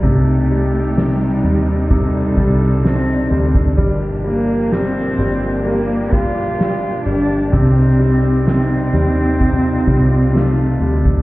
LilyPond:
<<
  \new Staff \with { instrumentName = "String section" } { \time 4/4 \key c \dorian \tempo 4 = 64 << { g'2 a'2 | g'1~ | g'2 f'2 | } \\ { <c' d' ees'>1 | <f bes>1 | <c' ees'>1 | } >> }
  \new Staff \with { instrumentName = "Cello" } { \time 4/4 \key c \dorian a4 g4 g4 c'8. r16 | r8 bes8 c'4 bes8 f'4 d'8 | c'4 c'2 a4 | }
  \new Staff \with { instrumentName = "Upright piano" } { \clef bass \time 4/4 \key c \dorian c8 g8 c8 g8 c8 g8 c8 g8 | g8 g8 g8 g8 g8 g8 g8 g8 | c8 g8 c8 g8 c8 g8 c8 g8 | }
  \new Staff \with { instrumentName = "Fingered electric bass" } { \clef bass \time 4/4 \key c \dorian c,4. ees,4 c,4 d,8 | g,,4. g,,2 g,,8 | c,4. ees,4 c,4 d,8 | }
  \new DrumStaff \with { instrumentName = "Drums" } \drummode { \time 4/4 <bd cymr>8 cymr8 <cymr sn>8 cymr8 <bd cymr>8 bd8 <cymr sn>8 cymr16 bd16 | <bd cymr>8 cymr8 <cymr sn>8 cymr8 cymr8 <bd cymr>8 <cymr sn>8 cymr8 | <bd cymr>8 cymr8 <cymr sn>8 cymr8 <bd cymr>8 bd8 <cymr sn>8 cymr16 bd16 | }
>>